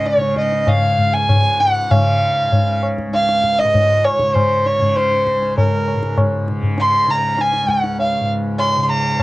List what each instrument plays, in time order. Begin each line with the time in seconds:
Already playing: tanpura C#2 G#2 C#3
0.06 violin C#5, tabla te
0.17 tanpura C#3
0.21 tabla te
0.36 violin D#5, tabla ke
0.52 tabla te
0.67 violin F5, tabla na, tabla ge
0.74 tanpura C#2
0.99 tabla ge
1.13 violin G#5
1.29 tanpura G#2, tabla na, tabla ge
1.60 violin F#5, tabla te
1.90 tanpura C#3, violin F5, tabla na, tabla ge
2.48 tanpura C#3
2.52 tabla tin, tabla ge
2.83 tabla na
2.98 tabla ke
3.06 tanpura C#2
3.13 violin F5, tabla te
3.29 tabla te
3.44 tabla ke
3.59 violin D#5, tabla te
3.63 tanpura G#2
3.74 tabla tin, tabla ge
4.05 violin C#5, tabla na
4.20 tanpura C#3, tabla ke
4.35 violin C5, tabla na, tabla ge
4.66 violin C#5, tabla te
4.78 tanpura C#3, tabla ge
4.96 violin C5, tabla te
5.12 tabla te
5.27 tabla ke
5.35 tanpura C#2
5.42 tabla te
5.57 violin A#4, tabla tin, tabla ge
5.88 tabla na
5.93 tanpura G#2
6.03 tabla ke
6.18 tabla na, tabla ge
6.48 tanpura C#3, tabla te
6.63 tabla ge
6.78 violin C6, tabla te
7.06 tanpura C#3, violin A#5, tabla te
7.39 violin G#5, tabla te
7.53 tabla te
7.64 tanpura C#2
7.69 violin F#5, tabla ke
7.84 tabla te
7.99 violin F5, tabla tin
8.20 tanpura G#2
8.59 violin C6, tabla na
8.77 tanpura C#3
8.83 violin C6
8.89 violin A#5
9.20 tabla na, tabla ge